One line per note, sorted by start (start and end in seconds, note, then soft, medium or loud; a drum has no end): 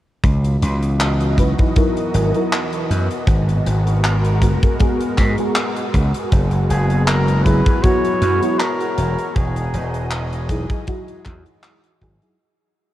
0.24 0.56 C#2 loud
0.24 3.25 E3 medium
0.24 6.28 B3 medium
0.24 3.25 F#4 medium
0.24 3.25 D#5 medium
0.24 kick loud
0.24 closed hi-hat medium
0.45 closed hi-hat medium
0.62 1.53 C#2 medium
0.62 closed hi-hat loud
0.83 closed hi-hat medium
1.00 clap loud
1.00 closed hi-hat medium
1.21 closed hi-hat medium
1.38 1.55 F#3 medium
1.38 1.56 D#4 medium
1.38 1.56 E4 medium
1.38 1.56 B4 medium
1.38 kick medium
1.38 closed hi-hat medium
1.58 1.72 F#3 medium
1.58 1.72 D#4 medium
1.58 1.72 E4 medium
1.58 1.73 B4 medium
1.58 kick loud
1.58 closed hi-hat medium
1.76 2.30 F#3 medium
1.76 2.30 D#4 medium
1.76 2.30 E4 medium
1.76 2.30 A#4 loud
1.76 kick loud
1.76 closed hi-hat medium
1.97 closed hi-hat soft
2.14 2.31 G#1 medium
2.14 closed hi-hat loud
2.34 2.53 F#3 medium
2.34 2.53 D#4 medium
2.34 2.53 E4 medium
2.34 2.54 A#4 medium
2.34 closed hi-hat soft
2.52 clap loud
2.52 closed hi-hat medium
2.73 closed hi-hat medium
2.90 3.07 F#2 medium
2.90 closed hi-hat loud
3.11 closed hi-hat medium
3.27 3.59 G#1 loud
3.27 12.36 G#3 medium
3.27 6.29 F#4 medium
3.27 6.29 A#4 medium
3.27 kick loud
3.27 closed hi-hat medium
3.49 closed hi-hat medium
3.66 4.57 G#1 medium
3.66 closed hi-hat medium
3.87 closed hi-hat medium
4.04 clap loud
4.04 closed hi-hat medium
4.24 closed hi-hat medium
4.42 4.59 G#3 medium
4.42 4.59 B3 medium
4.42 4.60 F#4 medium
4.42 4.60 A#4 medium
4.42 kick medium
4.42 closed hi-hat loud
4.62 4.76 G#3 medium
4.62 4.76 B3 medium
4.62 4.76 F#4 medium
4.62 4.76 A#4 medium
4.62 kick loud
4.62 closed hi-hat medium
4.79 5.33 G#3 loud
4.79 5.33 B3 medium
4.79 5.34 F#4 medium
4.79 5.34 G#4 loud
4.79 kick loud
4.79 closed hi-hat medium
5.00 closed hi-hat medium
5.18 5.35 G#2 medium
5.18 kick loud
5.18 clap medium
5.18 closed hi-hat medium
5.38 5.57 G#3 medium
5.38 5.57 B3 medium
5.38 5.57 F#4 medium
5.38 5.57 G#4 medium
5.38 closed hi-hat medium
5.56 clap loud
5.56 closed hi-hat medium
5.76 closed hi-hat medium
5.94 6.11 C#2 medium
5.94 kick medium
5.94 closed hi-hat medium
6.14 closed hi-hat medium
6.32 6.64 F#1 medium
6.32 8.95 B3 medium
6.32 8.95 E4 medium
6.32 12.36 F#4 medium
6.32 kick loud
6.32 closed hi-hat medium
6.51 closed hi-hat medium
6.69 7.61 F#1 medium
6.69 7.05 G#4 medium
6.69 closed hi-hat medium
6.90 closed hi-hat soft
7.07 7.43 A#4 loud
7.07 clap loud
7.07 closed hi-hat medium
7.28 closed hi-hat soft
7.45 7.63 F#3 medium
7.45 7.63 B3 medium
7.45 7.64 E4 medium
7.45 7.64 G#4 medium
7.45 7.84 B4 loud
7.45 kick medium
7.45 closed hi-hat medium
7.66 7.80 F#3 medium
7.66 7.80 B3 medium
7.66 7.80 E4 medium
7.66 7.80 G#4 medium
7.66 kick loud
7.66 closed hi-hat medium
7.83 8.37 F#3 medium
7.83 8.37 B3 medium
7.83 8.38 E4 medium
7.83 8.38 F#4 loud
7.83 8.61 C#5 loud
7.83 kick loud
7.83 closed hi-hat medium
8.05 closed hi-hat medium
8.22 8.39 F#2 medium
8.22 closed hi-hat medium
8.42 8.61 F#3 medium
8.42 8.61 B3 medium
8.42 8.61 E4 medium
8.42 8.61 F#4 medium
8.42 closed hi-hat soft
8.59 9.36 A#4 loud
8.59 clap loud
8.59 closed hi-hat medium
8.80 closed hi-hat medium
8.98 9.15 E1 medium
8.98 12.36 E3 medium
8.98 12.36 D#5 medium
8.98 closed hi-hat loud
9.19 closed hi-hat medium
9.35 9.68 E1 loud
9.35 10.11 G#4 medium
9.35 kick loud
9.35 closed hi-hat medium
9.56 closed hi-hat medium
9.74 10.64 E1 medium
9.74 closed hi-hat medium
9.94 closed hi-hat medium
10.11 clap loud
10.11 closed hi-hat medium
10.33 closed hi-hat medium
10.49 10.67 F#3 medium
10.49 10.67 D#4 medium
10.49 10.67 E4 medium
10.49 10.68 G#4 medium
10.49 kick medium
10.49 closed hi-hat loud
10.70 10.83 F#3 medium
10.70 10.84 D#4 medium
10.70 10.84 E4 medium
10.70 10.84 G#4 medium
10.70 kick loud
10.70 closed hi-hat medium
10.87 11.41 F#3 medium
10.87 11.41 D#4 medium
10.87 11.41 E4 medium
10.87 11.42 F#4 loud
10.87 kick loud
10.87 closed hi-hat medium
11.08 closed hi-hat medium
11.25 11.43 E2 medium
11.25 kick loud
11.25 clap medium
11.25 closed hi-hat medium
11.46 closed hi-hat medium
11.64 clap loud
11.64 closed hi-hat medium
11.84 closed hi-hat medium
12.01 12.18 G#1 medium
12.01 12.17 F#3 medium
12.01 12.17 D#4 medium
12.01 12.17 E4 medium
12.01 12.18 G#4 loud
12.01 kick medium
12.01 closed hi-hat medium
12.21 12.37 F#3 medium
12.21 12.37 D#4 medium
12.21 12.38 E4 medium
12.21 12.38 G#4 medium
12.21 closed hi-hat soft